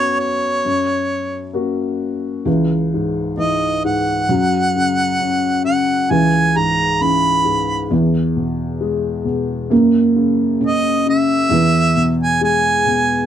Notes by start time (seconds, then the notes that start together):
Already playing: F#2 B3 C#4 F#4
0.00 C#5
0.20 C#5
0.65 F#2
1.53 A#3 C#4 F#4
2.45 C#2 E3
2.94 G#2
3.37 E3 D#4 D#5
3.84 G#2 F#5
4.29 F#2 F#3
4.76 C#3
5.20 C#4
5.65 C#3 F#5
6.10 C#2 E3 G#5
6.56 G#2 A#5
7.01 E3 C#4 B5
7.44 G#2
7.91 E2 E3
8.37 B2
8.81 G#3
9.25 B2
9.70 F#2 A#3
10.16 C#3
10.61 C#4
10.66 D#5
11.07 C#3 E5
11.49 E2 E3
11.96 B2
12.23 G#5
12.41 G#3 G#5
12.87 B2